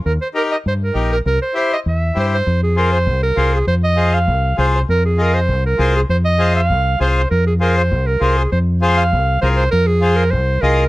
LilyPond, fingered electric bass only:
\new Staff \with { instrumentName = "Fingered electric bass" } { \clef bass \time 4/4 \key f \minor \tempo 4 = 198 ees,8 r4. g,4 bes,,4 | c,8 r4. e,4 g,4 | f,2 c,4 c,4 | f,2 c,4 c,4 |
f,2 c,4 c,4 | f,2 c,4 c,4 | f,2 c,4 c,4 | f,2 c,4 c,4 |
f,2 c,4 c,4 | }